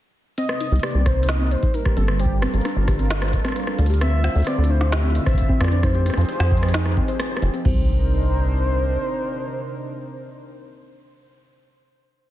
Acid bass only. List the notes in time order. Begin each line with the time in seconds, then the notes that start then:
0.72 C2
0.95 C2
1.97 G1
2.54 G1
2.76 G1
3.79 D2
4.36 D2
4.58 D2
5.60 F2
6.17 F2
6.40 F2
7.42 F1
7.65 C2